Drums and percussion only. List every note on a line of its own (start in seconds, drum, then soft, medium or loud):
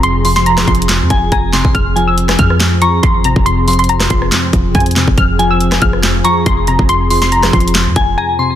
0.03 closed hi-hat medium
0.25 closed hi-hat medium
0.25 open hi-hat medium
0.36 snare medium
0.36 closed hi-hat soft
0.46 closed hi-hat medium
0.58 cross-stick medium
0.58 snare medium
0.58 clap medium
0.68 kick loud
0.68 closed hi-hat medium
0.75 closed hi-hat medium
0.82 closed hi-hat medium
0.89 snare loud
0.89 clap loud
0.89 closed hi-hat medium
1.10 kick loud
1.10 closed hi-hat medium
1.32 kick loud
1.32 closed hi-hat medium
1.53 snare loud
1.53 clap medium
1.65 kick medium
1.75 kick loud
1.75 closed hi-hat medium
1.97 closed hi-hat medium
2.18 closed hi-hat medium
2.29 cross-stick loud
2.29 snare medium
2.29 clap medium
2.39 kick loud
2.39 closed hi-hat loud
2.50 cross-stick medium
2.60 snare loud
2.60 clap loud
2.60 closed hi-hat medium
2.82 closed hi-hat medium
3.03 kick loud
3.03 closed hi-hat medium
3.24 closed hi-hat medium
3.36 kick loud
3.46 closed hi-hat medium
3.68 closed hi-hat medium
3.68 open hi-hat medium
3.73 closed hi-hat medium
3.79 closed hi-hat medium
3.84 closed hi-hat medium
3.89 closed hi-hat medium
4.00 cross-stick medium
4.00 snare medium
4.00 clap medium
4.10 kick loud
4.10 closed hi-hat medium
4.22 cross-stick medium
4.32 snare loud
4.32 clap loud
4.32 closed hi-hat medium
4.53 kick loud
4.53 closed hi-hat medium
4.75 kick loud
4.75 closed hi-hat medium
4.80 closed hi-hat medium
4.86 closed hi-hat medium
4.91 closed hi-hat medium
4.96 snare loud
4.96 clap medium
5.08 kick loud
5.18 kick loud
5.18 closed hi-hat medium
5.39 closed hi-hat medium
5.61 closed hi-hat medium
5.72 cross-stick medium
5.72 snare medium
5.72 clap medium
5.82 kick loud
5.82 closed hi-hat medium
5.93 cross-stick medium
6.03 snare loud
6.03 clap loud
6.03 closed hi-hat medium
6.25 closed hi-hat medium
6.46 kick loud
6.46 closed hi-hat medium
6.67 closed hi-hat medium
6.79 kick medium
6.89 closed hi-hat medium
7.10 closed hi-hat medium
7.10 open hi-hat medium
7.22 snare medium
7.22 closed hi-hat soft
7.32 closed hi-hat medium
7.43 cross-stick medium
7.43 snare medium
7.43 clap medium
7.53 kick loud
7.53 closed hi-hat medium
7.60 closed hi-hat medium
7.68 closed hi-hat medium
7.75 snare loud
7.75 clap loud
7.75 closed hi-hat medium
7.96 kick loud
7.96 closed hi-hat loud